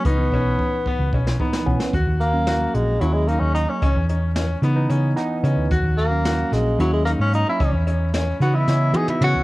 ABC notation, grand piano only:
X:1
M:7/8
L:1/8
Q:1/4=111
K:C#dor
V:1 name="Grand piano"
D C2 B, C B,2 | F2 F2 E D2 | C C C B, C D C | F2 F2 E D2 |
C C C B, C D C |]